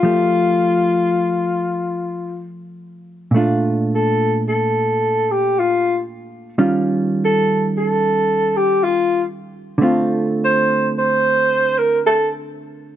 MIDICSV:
0, 0, Header, 1, 3, 480
1, 0, Start_track
1, 0, Key_signature, -1, "major"
1, 0, Tempo, 817439
1, 29, Time_signature, 4, 2, 24, 8
1, 1957, Key_signature, -2, "major"
1, 3870, Tempo, 803213
1, 7678, End_track
2, 0, Start_track
2, 0, Title_t, "Alto saxophone"
2, 0, Program_c, 0, 65
2, 0, Note_on_c, 0, 65, 66
2, 1455, Note_off_c, 0, 65, 0
2, 2321, Note_on_c, 0, 69, 70
2, 2598, Note_off_c, 0, 69, 0
2, 2635, Note_on_c, 0, 69, 63
2, 3120, Note_on_c, 0, 67, 67
2, 3129, Note_off_c, 0, 69, 0
2, 3287, Note_on_c, 0, 65, 65
2, 3295, Note_off_c, 0, 67, 0
2, 3527, Note_off_c, 0, 65, 0
2, 4265, Note_on_c, 0, 69, 66
2, 4529, Note_off_c, 0, 69, 0
2, 4577, Note_on_c, 0, 69, 67
2, 5053, Note_on_c, 0, 67, 72
2, 5062, Note_off_c, 0, 69, 0
2, 5213, Note_on_c, 0, 65, 69
2, 5222, Note_off_c, 0, 67, 0
2, 5451, Note_off_c, 0, 65, 0
2, 6176, Note_on_c, 0, 72, 71
2, 6441, Note_off_c, 0, 72, 0
2, 6498, Note_on_c, 0, 72, 75
2, 6975, Note_on_c, 0, 70, 77
2, 6984, Note_off_c, 0, 72, 0
2, 7101, Note_off_c, 0, 70, 0
2, 7142, Note_on_c, 0, 69, 78
2, 7283, Note_off_c, 0, 69, 0
2, 7678, End_track
3, 0, Start_track
3, 0, Title_t, "Hollow-body jazz guitar"
3, 0, Program_c, 1, 26
3, 18, Note_on_c, 1, 53, 39
3, 26, Note_on_c, 1, 57, 41
3, 28, Note_on_c, 1, 67, 42
3, 1944, Note_on_c, 1, 46, 46
3, 1951, Note_off_c, 1, 53, 0
3, 1955, Note_off_c, 1, 57, 0
3, 1956, Note_off_c, 1, 67, 0
3, 1963, Note_on_c, 1, 57, 50
3, 1972, Note_on_c, 1, 62, 53
3, 1978, Note_on_c, 1, 65, 52
3, 3863, Note_off_c, 1, 46, 0
3, 3864, Note_off_c, 1, 57, 0
3, 3865, Note_off_c, 1, 62, 0
3, 3865, Note_on_c, 1, 51, 43
3, 3867, Note_on_c, 1, 55, 41
3, 3868, Note_off_c, 1, 65, 0
3, 3868, Note_on_c, 1, 61, 51
3, 3875, Note_on_c, 1, 65, 50
3, 5774, Note_off_c, 1, 51, 0
3, 5776, Note_on_c, 1, 50, 54
3, 5790, Note_off_c, 1, 55, 0
3, 5790, Note_off_c, 1, 61, 0
3, 5794, Note_off_c, 1, 65, 0
3, 5794, Note_on_c, 1, 57, 56
3, 5800, Note_on_c, 1, 60, 54
3, 5807, Note_on_c, 1, 65, 61
3, 7678, Note_off_c, 1, 50, 0
3, 7678, Note_off_c, 1, 57, 0
3, 7678, Note_off_c, 1, 60, 0
3, 7678, Note_off_c, 1, 65, 0
3, 7678, End_track
0, 0, End_of_file